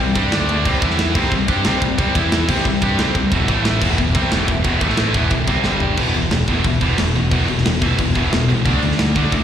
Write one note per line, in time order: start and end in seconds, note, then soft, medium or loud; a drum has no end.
0.00 0.14 C2 medium
0.00 0.13 C3 medium
0.00 0.32 G3 medium
0.00 0.13 G3 medium
0.00 0.31 C4 medium
0.00 0.31 C5 medium
0.15 0.31 G2 medium
0.15 0.32 G3 medium
0.15 0.32 D4 loud
0.15 0.33 G4 loud
0.15 kick loud
0.15 ride medium
0.32 0.63 D2 medium
0.32 0.65 D3 medium
0.32 0.65 A3 medium
0.32 0.65 A3 loud
0.32 0.65 D4 medium
0.32 0.66 D4 loud
0.32 0.65 D5 medium
0.32 snare loud
0.32 ride loud
0.49 ride medium
0.65 0.81 C2 loud
0.65 0.81 C3 loud
0.65 0.82 G3 loud
0.65 0.82 G3 medium
0.65 0.82 C4 medium
0.65 0.82 C4 loud
0.65 0.82 C5 medium
0.65 kick loud
0.65 crash medium
0.80 1.13 E2 loud
0.80 1.15 E3 medium
0.80 1.15 E3 loud
0.80 1.15 B3 medium
0.80 1.15 B3 loud
0.80 1.15 E4 loud
0.80 1.14 B4 medium
0.80 kick loud
0.80 ride medium
0.90 snare soft
0.99 snare loud
0.99 ride loud
1.14 1.31 C2 medium
1.14 1.30 C3 medium
1.14 2.14 G3 medium
1.14 1.31 G3 loud
1.14 2.13 C4 medium
1.14 1.32 C4 loud
1.14 2.14 C5 medium
1.14 kick loud
1.14 crash loud
1.32 1.47 C2 medium
1.32 1.45 C3 medium
1.32 1.46 G3 medium
1.32 kick medium
1.47 1.64 G2 medium
1.47 1.64 G3 medium
1.47 1.65 D4 medium
1.47 1.65 G4 loud
1.47 kick loud
1.47 ride medium
1.64 1.81 C2 loud
1.64 1.80 C3 medium
1.64 1.80 G3 loud
1.64 1.82 C4 loud
1.64 snare loud
1.64 ride loud
1.81 1.97 C2 medium
1.81 1.95 C3 medium
1.81 1.95 G3 medium
1.81 kick loud
1.81 ride medium
1.98 2.14 C2 loud
1.98 2.14 C3 loud
1.98 2.15 G3 loud
1.98 2.15 C4 loud
1.98 kick loud
1.98 ride loud
2.14 2.46 E2 loud
2.14 2.48 E3 medium
2.14 2.49 E3 medium
2.14 2.48 B3 loud
2.14 2.49 B3 medium
2.14 2.49 E4 loud
2.14 2.49 B4 medium
2.14 kick loud
2.14 ride medium
2.32 snare loud
2.32 ride loud
2.49 2.64 C2 medium
2.49 2.65 C3 loud
2.49 2.65 G3 loud
2.49 3.31 G3 medium
2.49 3.32 C4 medium
2.49 2.66 C4 loud
2.49 3.31 C5 medium
2.49 kick loud
2.49 crash loud
2.65 2.81 C2 medium
2.65 2.79 C3 medium
2.65 2.79 G3 medium
2.65 kick medium
2.82 2.98 G2 medium
2.82 2.98 G3 medium
2.82 2.99 D4 loud
2.82 2.99 G4 loud
2.82 kick loud
2.82 ride medium
2.99 3.14 C2 medium
2.99 3.15 C3 loud
2.99 3.15 G3 loud
2.99 3.16 C4 loud
2.99 snare loud
2.99 ride medium
3.15 3.31 C2 medium
3.15 3.29 C3 medium
3.15 3.29 G3 medium
3.15 kick medium
3.15 ride medium
3.32 3.47 E1 loud
3.32 3.49 E2 loud
3.32 3.48 B2 loud
3.32 3.48 E3 loud
3.32 3.49 G3 medium
3.32 3.82 E4 medium
3.32 3.49 B4 medium
3.32 kick loud
3.32 ride loud
3.48 3.79 A1 loud
3.48 3.81 A2 loud
3.48 3.82 E3 loud
3.48 3.82 A3 medium
3.48 3.82 A3 loud
3.48 5.63 E5 medium
3.48 kick loud
3.48 ride medium
3.65 snare loud
3.65 ride loud
3.82 3.97 E1 loud
3.82 3.98 E2 loud
3.82 3.98 B2 loud
3.82 3.99 E3 loud
3.82 4.81 B3 medium
3.82 4.81 G4 medium
3.82 kick loud
3.82 crash loud
3.98 4.14 E1 medium
3.98 4.12 E2 medium
3.98 4.12 B2 medium
3.98 kick medium
4.14 4.31 C2 loud
4.14 4.31 C3 medium
4.14 4.31 G3 loud
4.14 4.31 C4 loud
4.14 kick loud
4.14 ride medium
4.31 4.47 E1 loud
4.31 4.47 E2 loud
4.31 4.48 B2 loud
4.31 4.48 E3 loud
4.31 snare loud
4.31 ride loud
4.48 4.64 E1 medium
4.48 4.62 E2 medium
4.48 4.62 B2 medium
4.48 kick medium
4.48 ride medium
4.64 4.80 E1 loud
4.64 4.81 E2 loud
4.64 4.81 B2 loud
4.64 4.81 E3 loud
4.64 kick loud
4.64 ride loud
4.81 5.12 A1 loud
4.81 5.14 A2 medium
4.81 5.14 E3 loud
4.81 5.15 A3 medium
4.81 5.15 A3 loud
4.81 5.15 E4 medium
4.81 kick loud
4.81 ride medium
4.90 snare soft
4.97 snare loud
4.97 ride loud
5.13 5.30 E1 medium
5.13 5.29 E2 loud
5.13 5.30 B2 loud
5.13 5.31 E3 loud
5.13 5.64 B3 medium
5.13 5.97 G4 medium
5.13 kick loud
5.13 ride medium
5.30 5.47 E1 medium
5.30 5.44 E2 medium
5.30 5.45 B2 medium
5.30 kick medium
5.30 ride loud
5.47 5.64 C2 medium
5.47 5.65 C3 medium
5.47 5.64 G3 loud
5.47 5.65 C4 loud
5.47 kick loud
5.47 ride medium
5.64 5.96 G1 loud
5.64 5.97 G2 loud
5.64 5.98 D3 loud
5.64 5.98 G3 loud
5.64 5.98 D4 medium
5.64 5.98 G5 medium
5.64 snare medium
5.80 floor tom medium
5.97 6.12 E1 medium
5.97 6.13 E2 medium
5.97 6.13 B2 loud
5.97 6.14 E3 loud
5.97 kick loud
5.97 crash loud
5.97 crash medium
6.14 6.29 E1 medium
6.14 6.30 E2 medium
6.14 6.30 B2 medium
6.14 crash medium
6.31 6.60 E1 loud
6.31 6.47 E2 medium
6.31 6.47 B2 medium
6.31 snare loud
6.31 crash medium
6.48 6.64 E2 medium
6.48 6.65 B2 loud
6.48 6.65 E3 loud
6.48 kick medium
6.48 crash medium
6.64 6.79 E1 medium
6.64 6.80 E2 medium
6.64 6.80 B2 medium
6.64 kick loud
6.64 crash medium
6.81 6.96 E1 medium
6.81 6.97 E2 medium
6.81 6.98 B2 loud
6.81 6.98 E3 loud
6.81 kick medium
6.81 crash medium
6.98 7.13 E1 loud
6.98 7.13 E2 medium
6.98 7.13 B2 medium
6.98 snare loud
6.98 crash medium
7.15 7.30 E1 medium
7.15 7.29 E2 medium
7.15 7.30 B2 medium
7.15 crash medium
7.31 7.46 E1 loud
7.31 7.46 E2 loud
7.31 7.47 B2 loud
7.31 7.48 E3 loud
7.31 kick loud
7.31 crash medium
7.47 7.63 E1 medium
7.47 7.63 E2 medium
7.47 7.63 B2 medium
7.47 crash medium
7.58 snare soft
7.65 7.80 E1 loud
7.65 7.80 E2 medium
7.65 7.80 B2 medium
7.65 snare loud
7.65 crash medium
7.81 7.96 E1 medium
7.81 7.97 E2 loud
7.81 7.97 B2 loud
7.81 7.98 E3 loud
7.81 kick medium
7.81 crash medium
7.98 8.13 E1 loud
7.98 8.14 E2 medium
7.98 8.13 B2 medium
7.98 kick loud
7.98 crash medium
8.15 8.30 E1 medium
8.15 8.31 E2 medium
8.15 8.32 B2 loud
8.15 8.32 E3 medium
8.15 kick medium
8.15 crash medium
8.31 8.46 E1 medium
8.31 8.47 E2 medium
8.31 8.47 B2 medium
8.31 snare loud
8.31 crash medium
8.48 8.63 C2 medium
8.48 8.64 E2 medium
8.48 8.64 B2 medium
8.48 crash medium
8.65 8.80 D2 loud
8.65 8.81 D3 loud
8.65 8.82 A3 loud
8.65 8.82 D4 loud
8.65 kick loud
8.65 crash medium
8.82 8.96 D2 loud
8.82 8.97 D3 medium
8.82 8.97 A3 medium
8.82 crash medium
8.92 snare soft
8.99 9.28 D2 loud
8.99 9.14 D3 medium
8.99 9.14 A3 medium
8.99 snare loud
8.99 crash medium
9.16 9.31 D3 medium
9.16 9.32 A3 loud
9.16 9.32 D4 loud
9.16 kick medium
9.16 crash medium
9.32 9.44 D2 loud
9.32 9.44 D3 medium
9.32 9.44 A3 medium
9.32 kick loud
9.32 crash medium